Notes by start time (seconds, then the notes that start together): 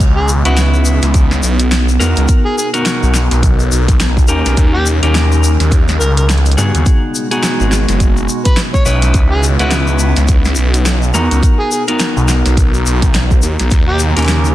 0.00 C#2 B3, kick, closed hi-hat, shaker
0.16 G#4
0.29 shaker
0.45 C#2 C#4 D#4 E4 F#4 B4, closed hi-hat, shaker
0.57 snare, closed hi-hat, shaker
0.74 shaker
0.85 shaker
1.02 C#2, snare, closed hi-hat, shaker
1.14 kick, closed hi-hat, shaker
1.31 snare, shaker
1.43 B1, shaker
1.59 closed hi-hat, shaker
1.72 snare, closed hi-hat, shaker
1.89 shaker
2.00 E2 B3 D#4 F#4 A#4, snare, shaker
2.16 C#2, closed hi-hat, shaker
2.28 B2 D#4 A#4, kick, closed hi-hat, shaker
2.45 G#4
2.57 G#4, shaker
2.74 B3 D#4 F#4 A#4, closed hi-hat, shaker
2.86 snare, closed hi-hat, shaker
3.03 B1, shaker
3.14 snare, shaker
3.31 B1, snare, closed hi-hat, shaker
3.43 kick, closed hi-hat, shaker
3.60 shaker
3.71 B1, shaker
3.88 kick, closed hi-hat, shaker
4.00 snare, closed hi-hat, shaker
4.17 kick, shaker
4.28 D#2 C#4 D#4 G4 A#4, shaker
4.45 B1, snare, closed hi-hat, shaker
4.57 D#2 C#3 G3, kick, closed hi-hat, shaker
4.74 G4
4.86 shaker
5.03 D#2 C#4 D#4 G4 A#4, closed hi-hat, shaker
5.15 snare, closed hi-hat, shaker
5.32 shaker
5.44 shaker
5.60 D#2, snare, closed hi-hat, shaker
5.72 kick, closed hi-hat, shaker
5.89 snare, shaker
6.00 C#2 A#4, shaker
6.17 A#4, closed hi-hat, shaker
6.29 snare, closed hi-hat, shaker
6.38 closed hi-hat
6.46 closed hi-hat, shaker
6.52 closed hi-hat
6.57 G2 B3 D#4 F#4 G#4, snare, shaker
6.74 D#2, closed hi-hat, shaker
6.86 B2 G#3 F#4, kick, closed hi-hat, shaker
7.15 shaker
7.31 B3 D#4 F#4 G#4, closed hi-hat, shaker
7.43 snare, closed hi-hat, shaker
7.60 G#1, shaker
7.72 snare, shaker
7.89 F#1, snare, closed hi-hat, shaker
8.00 kick, closed hi-hat, shaker
8.17 shaker
8.29 shaker
8.45 B4, kick, closed hi-hat, shaker
8.57 snare, closed hi-hat, shaker
8.74 C#5, kick, shaker
8.85 B1 C#4 D#4 E4 B4 C#5, shaker
9.02 snare, closed hi-hat, shaker
9.14 C#2 B3, kick, closed hi-hat, shaker
9.31 G#4
9.43 shaker
9.59 C#2 C#4 D#4 E4 F#4 B4, closed hi-hat, shaker
9.71 snare, closed hi-hat, shaker
9.87 shaker
9.99 shaker
10.16 C#2, snare, closed hi-hat, shaker
10.28 kick, closed hi-hat, shaker
10.45 snare, shaker
10.55 B1, shaker
10.74 closed hi-hat, shaker
10.86 snare, closed hi-hat, shaker
11.02 shaker
11.14 E2 B3 D#4 F#4 A#4, snare, shaker
11.31 C#2, closed hi-hat, shaker
11.43 B2 D#4 A#4, kick, closed hi-hat, shaker
11.60 G#4
11.72 G#4, shaker
11.88 B3 D#4 F#4 A#4, closed hi-hat, shaker
11.99 snare, closed hi-hat, shaker
12.17 B1, shaker
12.28 snare, shaker
12.46 B1, snare, closed hi-hat, shaker
12.57 kick, closed hi-hat, shaker
12.74 shaker
12.85 B1, shaker
13.02 kick, closed hi-hat, shaker
13.14 snare, closed hi-hat, shaker
13.31 kick, shaker
13.42 D#2, shaker
13.59 B1, snare, closed hi-hat, shaker
13.71 D#2 C#3 G3, kick, closed hi-hat, shaker
13.88 G4
13.99 shaker
14.16 D#2 C#4 D#4 G4 A#4, closed hi-hat, shaker
14.19 closed hi-hat
14.22 closed hi-hat
14.25 closed hi-hat
14.26 snare, closed hi-hat, shaker
14.28 closed hi-hat
14.45 shaker